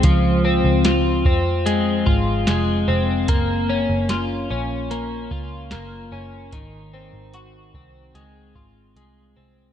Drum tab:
HH |x-x-x-x-|x-x-x-x-|x-x-x-x-|
SD |--o---o-|--o---o-|--------|
BD |o--o-o--|o----o--|o--o-o--|